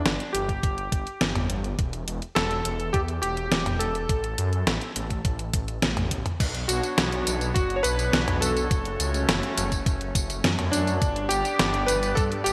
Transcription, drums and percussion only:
0.06 snare, closed hi-hat
0.20 closed hi-hat
0.35 closed hi-hat
0.49 kick, closed hi-hat
0.63 kick, closed hi-hat
0.78 closed hi-hat
0.92 kick, closed hi-hat
1.07 closed hi-hat
1.21 snare, closed hi-hat
1.35 closed hi-hat, mid tom
1.50 closed hi-hat
1.64 closed hi-hat
1.79 kick, closed hi-hat
1.93 closed hi-hat
2.08 closed hi-hat
2.22 closed hi-hat
2.36 snare, closed hi-hat
2.51 closed hi-hat
2.65 closed hi-hat
2.80 closed hi-hat
2.94 kick, closed hi-hat
3.08 closed hi-hat
3.23 closed hi-hat
3.37 closed hi-hat
3.52 snare, closed hi-hat
3.66 closed hi-hat, mid tom
3.81 closed hi-hat
3.95 closed hi-hat
4.09 kick, closed hi-hat
4.24 closed hi-hat
4.38 closed hi-hat
4.53 closed hi-hat
4.67 snare, closed hi-hat
4.81 closed hi-hat
4.96 closed hi-hat
5.10 kick, closed hi-hat
5.25 kick, closed hi-hat
5.39 closed hi-hat
5.54 kick, closed hi-hat
5.68 closed hi-hat
5.82 snare, closed hi-hat, high tom
5.97 closed hi-hat, mid tom, high tom
6.11 kick, closed hi-hat
6.26 closed hi-hat, mid tom
6.40 kick, closed hi-hat, tambourine, crash
6.55 closed hi-hat
6.69 closed hi-hat, tambourine
6.83 closed hi-hat, tambourine
6.98 snare, closed hi-hat, tambourine
7.12 closed hi-hat
7.27 closed hi-hat, tambourine
7.41 closed hi-hat, tambourine
7.56 kick, closed hi-hat, tambourine
7.70 closed hi-hat
7.84 closed hi-hat, tambourine
7.99 closed hi-hat, tambourine
8.13 snare, closed hi-hat, tambourine
8.28 closed hi-hat, mid tom
8.42 closed hi-hat, tambourine
8.57 closed hi-hat, tambourine
8.71 kick, closed hi-hat, tambourine
8.85 closed hi-hat
9.00 closed hi-hat, tambourine
9.14 closed hi-hat, tambourine
9.29 snare, closed hi-hat, tambourine
9.43 closed hi-hat
9.58 closed hi-hat, tambourine
9.72 kick, closed hi-hat, tambourine
9.86 kick, closed hi-hat, tambourine
10.01 closed hi-hat
10.15 kick, closed hi-hat, tambourine
10.30 closed hi-hat, tambourine
10.44 snare, closed hi-hat, tambourine
10.59 closed hi-hat, mid tom
10.73 closed hi-hat, tambourine
10.87 closed hi-hat, tambourine
11.02 kick, closed hi-hat, tambourine
11.16 closed hi-hat
11.31 closed hi-hat, tambourine
11.45 closed hi-hat, tambourine
11.59 snare, closed hi-hat, tambourine
11.74 closed hi-hat
11.88 closed hi-hat, tambourine
12.03 closed hi-hat, tambourine
12.17 kick, closed hi-hat, tambourine
12.32 closed hi-hat
12.46 closed hi-hat, tambourine

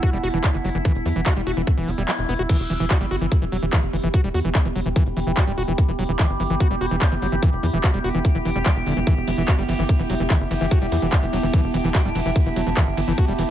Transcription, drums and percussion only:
0.03 kick, closed hi-hat
0.13 closed hi-hat
0.23 open hi-hat
0.34 closed hi-hat
0.44 kick, clap, closed hi-hat
0.54 closed hi-hat
0.65 open hi-hat
0.75 closed hi-hat
0.85 kick, closed hi-hat
0.95 closed hi-hat
1.06 open hi-hat
1.16 closed hi-hat
1.26 kick, clap, closed hi-hat
1.36 closed hi-hat
1.47 open hi-hat
1.57 closed hi-hat
1.67 kick, closed hi-hat
1.78 closed hi-hat
1.88 open hi-hat
1.98 closed hi-hat
2.08 clap, closed hi-hat
2.19 closed hi-hat
2.29 open hi-hat
2.39 closed hi-hat
2.49 kick, closed hi-hat, crash
2.60 closed hi-hat
2.70 open hi-hat
2.80 closed hi-hat
2.91 kick, clap, closed hi-hat
3.01 closed hi-hat
3.11 open hi-hat
3.21 closed hi-hat
3.32 kick, closed hi-hat
3.42 closed hi-hat
3.52 open hi-hat
3.73 kick, clap, closed hi-hat
3.83 closed hi-hat
3.93 open hi-hat
4.04 closed hi-hat
4.14 kick, closed hi-hat
4.24 closed hi-hat
4.34 open hi-hat
4.45 closed hi-hat
4.55 kick, clap, closed hi-hat
4.65 closed hi-hat
4.76 open hi-hat
4.86 closed hi-hat
4.96 kick, closed hi-hat
5.06 closed hi-hat
5.17 open hi-hat
5.27 closed hi-hat
5.37 kick, clap, closed hi-hat
5.47 closed hi-hat
5.58 open hi-hat
5.68 closed hi-hat
5.78 kick, closed hi-hat
5.89 closed hi-hat
5.99 open hi-hat
6.19 kick, clap, closed hi-hat
6.30 closed hi-hat
6.40 open hi-hat
6.50 closed hi-hat
6.60 kick, closed hi-hat
6.71 closed hi-hat
6.81 open hi-hat
6.91 closed hi-hat
7.02 kick, clap, closed hi-hat
7.12 closed hi-hat
7.22 open hi-hat
7.32 closed hi-hat
7.43 kick, closed hi-hat
7.53 closed hi-hat
7.63 open hi-hat
7.84 kick, clap, closed hi-hat
7.94 closed hi-hat
8.04 open hi-hat
8.15 closed hi-hat
8.25 kick, closed hi-hat
8.35 closed hi-hat
8.45 open hi-hat
8.66 kick, clap, closed hi-hat
8.76 closed hi-hat
8.86 open hi-hat
9.07 kick, closed hi-hat
9.17 closed hi-hat
9.28 open hi-hat, ride
9.38 closed hi-hat
9.48 kick, clap, closed hi-hat
9.58 closed hi-hat
9.69 open hi-hat, ride
9.79 closed hi-hat
9.89 kick, closed hi-hat
9.99 closed hi-hat
10.10 open hi-hat, ride
10.30 kick, clap, closed hi-hat
10.41 closed hi-hat
10.51 open hi-hat, ride
10.61 closed hi-hat
10.71 kick, closed hi-hat
10.82 closed hi-hat
10.92 open hi-hat, ride
11.02 closed hi-hat
11.12 kick, clap, closed hi-hat
11.23 closed hi-hat
11.33 open hi-hat, ride
11.43 closed hi-hat
11.54 kick, closed hi-hat
11.64 closed hi-hat
11.74 open hi-hat, ride
11.84 closed hi-hat
11.95 kick, clap, closed hi-hat
12.05 closed hi-hat
12.15 open hi-hat, ride
12.26 closed hi-hat
12.36 kick, closed hi-hat
12.46 closed hi-hat
12.56 open hi-hat, ride
12.67 closed hi-hat
12.77 kick, clap, closed hi-hat
12.87 closed hi-hat
12.97 open hi-hat, ride
13.18 kick, closed hi-hat
13.28 closed hi-hat
13.39 open hi-hat, ride

